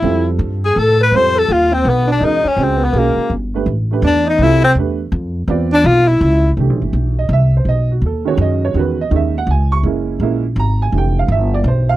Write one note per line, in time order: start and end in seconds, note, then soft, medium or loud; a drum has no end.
0.00 0.38 F2 medium
0.00 0.58 G3 medium
0.00 0.59 C4 medium
0.00 0.28 E4 medium
0.04 0.59 F4 medium
0.04 0.59 A4 medium
0.39 0.75 G2 medium
0.65 0.80 G#4 medium
0.65 0.79 G#4 medium
0.76 1.11 A2 medium
0.76 1.00 A4 medium
0.76 1.01 A4 medium
1.01 1.16 B4 medium
1.01 1.17 B4 medium
1.12 1.48 F2 medium
1.12 2.15 G3 medium
1.12 2.15 C4 medium
1.12 2.15 F4 medium
1.12 2.15 A4 medium
1.12 1.37 C5 medium
1.16 1.40 C5 loud
1.35 1.52 A4 medium
1.35 1.54 A4 medium
1.48 1.84 D#2 medium
1.48 1.74 F4 medium
1.48 1.75 F4 medium
1.72 1.88 C4 medium
1.72 1.91 C4 medium
1.85 2.20 B1 medium
1.85 2.07 B3 medium
1.89 2.11 B3 medium
2.07 2.22 D4 medium
2.12 2.26 D4 medium
2.20 2.43 E2 medium
2.20 2.43 G#3 medium
2.20 2.43 C#4 medium
2.20 2.45 D#4 medium
2.20 2.43 F#4 soft
2.20 2.44 A#4 medium
2.25 2.50 D#4 medium
2.44 2.58 C#4 medium
2.44 muted upright bass stroke soft
2.48 2.65 C#4 medium
2.56 2.93 C#2 medium
2.56 2.79 G#3 medium
2.56 2.80 C4 medium
2.56 2.79 C#4 medium
2.56 2.80 F#4 medium
2.56 2.80 G#4 medium
2.63 2.86 C4 medium
2.78 2.95 B3 medium
2.84 3.00 B3 medium
2.93 3.15 B1 medium
2.93 3.31 G#3 medium
2.93 3.30 A#3 medium
2.93 3.31 C#4 medium
2.93 3.31 F#4 medium
2.93 3.32 G#4 medium
2.99 3.33 A#3 medium
3.16 muted upright bass stroke soft
3.30 3.66 G1 medium
3.54 3.66 A3 medium
3.54 3.66 D4 medium
3.54 3.67 G4 medium
3.54 3.67 B4 medium
3.66 4.01 A1 medium
3.91 4.37 A3 medium
3.91 4.38 D4 medium
3.91 4.38 G4 medium
3.91 4.38 B4 medium
4.02 4.38 E2 loud
4.02 4.25 D4 medium
4.06 4.27 D4 medium
4.26 4.43 D#4 medium
4.26 4.44 D#4 medium
4.38 4.74 C2 medium
4.38 4.61 G3 medium
4.38 4.62 C4 medium
4.38 4.63 E4 medium
4.43 4.64 E4 loud
4.43 4.62 F4 medium
4.43 4.62 A4 medium
4.64 4.76 C4 medium
4.64 4.72 C4 loud
4.75 5.11 E2 medium
4.75 4.97 A3 medium
4.75 4.98 D4 medium
4.75 4.98 G4 medium
4.75 4.98 B4 medium
5.12 5.47 F2 loud
5.48 5.83 E2 medium
5.48 6.03 C4 medium
5.48 6.04 F4 medium
5.48 6.04 B4 medium
5.48 6.04 D5 medium
5.72 5.87 D4 medium
5.72 5.88 D4 loud
5.84 6.20 B1 loud
5.84 6.09 F4 medium
5.84 6.10 F4 loud
6.07 6.51 E4 medium
6.21 6.56 C#2 loud
6.57 6.69 C2 medium
6.57 7.12 E3 medium
6.57 7.13 A3 medium
6.57 7.13 D4 medium
6.57 7.13 G4 medium
6.69 6.81 B1 medium
6.82 6.92 G1 medium
6.93 7.28 B1 medium
7.19 7.31 D#5 medium
7.29 7.64 C2 loud
7.33 7.54 E5 medium
7.57 7.68 C5 medium
7.65 8.01 B1 medium
7.65 7.90 D#5 loud
7.91 8.03 F#4 medium
8.02 8.37 D#2 medium
8.06 8.27 A4 medium
8.25 8.72 D#3 medium
8.25 8.73 G#3 medium
8.25 8.73 C#4 medium
8.25 8.73 F#4 medium
8.25 8.40 C#5 medium
8.37 8.73 F#2 loud
8.37 8.63 D#5 medium
8.65 8.76 C#5 medium
8.74 9.10 E2 medium
8.74 8.96 D#3 medium
8.74 8.96 G#3 medium
8.74 8.96 C#4 medium
8.74 8.97 F#4 medium
8.79 9.00 B4 medium
9.01 9.13 D#5 medium
9.11 9.46 D#2 medium
9.11 9.32 D#3 medium
9.11 9.32 G#3 medium
9.11 9.33 C#4 medium
9.11 9.33 D#4 medium
9.16 9.36 E5 medium
9.38 9.49 F#5 medium
9.47 9.82 C#2 medium
9.51 9.72 G#5 medium
9.72 9.80 C#6 loud
9.83 10.19 F#1 medium
9.83 10.19 G#3 medium
9.83 10.19 A#3 medium
9.83 10.20 C#4 medium
9.83 10.20 E4 medium
10.20 10.55 A#1 medium
10.20 10.41 G#3 medium
10.20 10.41 A#3 medium
10.20 10.42 C#4 medium
10.20 10.42 E4 medium
10.56 10.91 G#1 medium
10.56 10.80 A#5 medium
10.82 10.94 G#5 medium
10.92 11.28 F1 medium
10.92 11.93 E3 medium
10.92 11.94 A3 soft
10.92 11.94 D4 soft
10.92 11.94 G4 medium
10.98 11.18 G5 medium
11.19 11.30 F5 medium
11.28 11.63 G1 loud
11.28 11.53 E5 medium
11.54 11.66 D5 medium
11.64 11.97 B1 medium
11.64 11.89 C5 medium
11.89 11.97 F5 loud